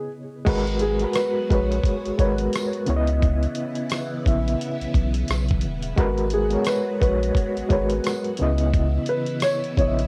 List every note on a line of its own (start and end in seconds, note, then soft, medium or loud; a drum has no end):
0.00 0.48 C#3 medium
0.00 0.48 B3 medium
0.00 0.48 E4 medium
0.00 0.48 C#5 medium
0.00 0.48 D#5 medium
0.45 1.05 G#1 loud
0.45 2.85 F#3 medium
0.45 0.86 G#3 loud
0.45 2.86 G#3 medium
0.45 2.85 B3 medium
0.45 0.87 F#4 loud
0.45 2.85 F#4 medium
0.45 0.88 A#4 medium
0.45 0.88 B4 loud
0.45 kick loud
0.45 closed hi-hat medium
0.45 crash medium
0.67 closed hi-hat soft
0.79 1.12 G#4 medium
0.79 closed hi-hat medium
1.00 1.40 G#3 medium
1.00 1.40 F#4 medium
1.00 1.41 A#4 medium
1.00 closed hi-hat soft
1.04 1.42 B4 medium
1.13 1.46 B4 medium
1.13 cross-stick medium
1.13 closed hi-hat medium
1.13 tambourine medium
1.50 1.80 A#1 medium
1.50 2.06 G#3 medium
1.50 2.06 F#4 medium
1.50 1.81 B4 medium
1.50 2.07 B4 medium
1.50 2.08 C#5 medium
1.50 kick medium
1.50 closed hi-hat medium
1.72 closed hi-hat soft
1.84 kick medium
1.84 closed hi-hat medium
2.05 2.12 G#1 soft
2.05 closed hi-hat soft
2.18 2.48 G#1 medium
2.18 2.87 G#3 medium
2.18 2.88 F#4 medium
2.18 2.88 A#4 medium
2.18 2.89 B4 medium
2.18 2.37 C#5 medium
2.18 kick medium
2.18 closed hi-hat medium
2.38 closed hi-hat soft
2.53 cross-stick loud
2.53 closed hi-hat medium
2.53 tambourine medium
2.73 closed hi-hat soft
2.86 3.47 C#2 medium
2.86 3.98 C#3 medium
2.86 5.95 C#3 medium
2.86 5.95 E3 medium
2.86 3.99 B3 medium
2.86 5.95 B3 medium
2.86 5.95 E4 medium
2.86 4.00 E4 medium
2.86 2.96 C#5 medium
2.86 closed hi-hat medium
2.96 4.03 D#5 loud
3.07 closed hi-hat soft
3.22 kick loud
3.22 closed hi-hat medium
3.43 closed hi-hat soft
3.55 closed hi-hat medium
3.75 closed hi-hat soft
3.90 cross-stick loud
3.90 closed hi-hat medium
3.90 tambourine medium
4.24 4.55 A#1 medium
4.24 5.32 C#3 medium
4.24 5.33 B3 medium
4.24 5.33 E4 medium
4.24 5.34 E5 medium
4.24 kick medium
4.24 closed hi-hat medium
4.48 closed hi-hat soft
4.61 closed hi-hat medium
4.81 4.87 B1 medium
4.81 closed hi-hat soft
4.94 5.24 B1 medium
4.94 kick medium
4.94 closed hi-hat medium
5.14 closed hi-hat medium
5.28 5.66 B1 medium
5.28 cross-stick loud
5.28 closed hi-hat medium
5.28 tambourine medium
5.49 kick medium
5.49 closed hi-hat soft
5.61 5.93 D#1 medium
5.61 closed hi-hat medium
5.83 closed hi-hat medium
5.96 6.57 G#1 loud
5.96 8.37 F#3 medium
5.96 6.38 G#3 loud
5.96 8.37 G#3 medium
5.96 8.37 B3 medium
5.96 6.38 F#4 loud
5.96 8.37 F#4 medium
5.96 6.39 A#4 loud
5.96 6.40 B4 loud
5.96 kick loud
5.96 closed hi-hat medium
6.18 closed hi-hat soft
6.30 6.64 G#4 medium
6.30 closed hi-hat medium
6.50 6.90 G#3 medium
6.50 6.91 F#4 medium
6.50 6.92 A#4 medium
6.50 6.92 C#5 medium
6.50 closed hi-hat soft
6.65 6.98 B4 medium
6.65 cross-stick loud
6.65 closed hi-hat medium
6.65 tambourine medium
7.00 7.31 A#1 medium
7.00 7.56 G#3 medium
7.00 7.57 F#4 medium
7.00 7.32 B4 medium
7.00 7.58 B4 medium
7.00 kick medium
7.00 closed hi-hat medium
7.04 7.59 C#5 medium
7.23 closed hi-hat soft
7.35 kick medium
7.35 closed hi-hat medium
7.57 7.63 G#1 soft
7.57 closed hi-hat soft
7.69 8.00 G#1 medium
7.69 8.39 G#3 medium
7.69 8.39 F#4 medium
7.69 8.40 A#4 medium
7.69 8.40 B4 medium
7.69 7.88 C#5 medium
7.69 kick medium
7.69 closed hi-hat medium
7.90 closed hi-hat medium
8.04 cross-stick loud
8.04 closed hi-hat medium
8.04 tambourine medium
8.24 closed hi-hat soft
8.37 8.99 C#2 medium
8.37 10.07 C#3 medium
8.37 9.51 C#3 loud
8.37 10.07 E3 medium
8.37 10.07 B3 medium
8.37 9.51 B3 medium
8.37 10.07 E4 medium
8.37 closed hi-hat medium
8.41 9.52 E4 medium
8.41 9.52 D#5 medium
8.58 closed hi-hat medium
8.74 kick loud
8.74 closed hi-hat medium
9.06 9.40 B4 medium
9.06 closed hi-hat medium
9.26 closed hi-hat soft
9.40 9.74 C#5 medium
9.40 cross-stick loud
9.40 closed hi-hat medium
9.40 tambourine medium
9.64 closed hi-hat soft
9.77 10.07 A#1 medium
9.77 10.07 C#3 medium
9.77 10.07 B3 medium
9.77 10.07 E4 medium
9.77 10.07 C#5 medium
9.77 9.87 D#5 medium
9.77 kick medium
9.77 closed hi-hat medium
9.87 10.07 E5 medium
9.99 closed hi-hat soft